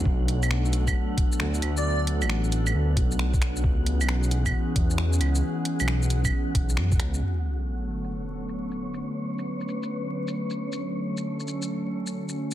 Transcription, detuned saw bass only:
X:1
M:4/4
L:1/16
Q:"Swing 16ths" 1/4=134
K:Dlyd
V:1 name="Detuned saw bass" clef=bass
B,,,8 z4 D,,2 D,,2- | D,,3 A,,,4- A,,, D,,2 B,,,6 | C,,3 B,,,4- B,,, z2 E,,4 C,,2 | z3 B,,,4- B,,, z2 B,,,2 F,,2 C,,2 |
z16 | z16 | z16 |]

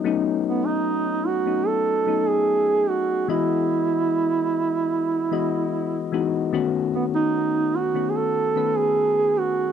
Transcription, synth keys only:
X:1
M:4/4
L:1/16
Q:1/4=74
K:Bmix
V:1 name="Synth keys"
[F,A,B,CD]4 z3 [F,A,B,CD]2 z [F,A,B,CD]4 z2 | [E,G,B,Fd]4- [E,G,B,Fd] z4 z [E,G,B,Fd]3 z [E,G,B,DF] z | [D,A,B,CF]4 z3 [D,A,B,CF]2 z [D,A,B,CB]4 z2 |]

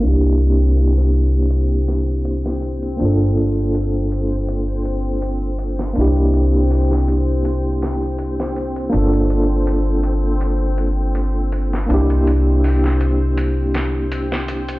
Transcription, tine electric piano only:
X:1
M:4/4
L:1/8
Q:"Swing 16ths" 1/4=81
K:Cmix
V:1 name="Tine electric piano"
[B,DEG]8 | [B,DFA]8 | [B,DEG]8 | [B,DFA]8 |
[B,DEG]8 |]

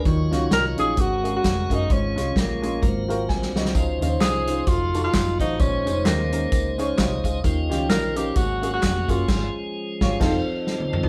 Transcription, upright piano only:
X:1
M:4/4
L:1/8
Q:"Swing" 1/4=130
K:Db
V:1 name="Upright piano"
z [DEFG] z [DEFA] z [B,DGA] z [B,DGA] | z [A,DFA] z [A,DFA] z [CFGB] [ca] [Ge]- | [Ge] [DEFc] z [DEFc] z [EFG=A] z [EFGc] | z [DEAc] z [DEAB] z [DEAd] [Fd] [Af]- |
[Af] [DEF=G] z [DEFB] z [B,D_GA] z [B,DGA] | z3 [Fd] [CEF=Af] z3 |]
V:2 name="Upright piano" clef=bass
E,3 z A,,3 z | A,,3 z A,,3 z | D,3 z4 z | B,,3 z4 z |
E,3 z A,,3 z | z8 |]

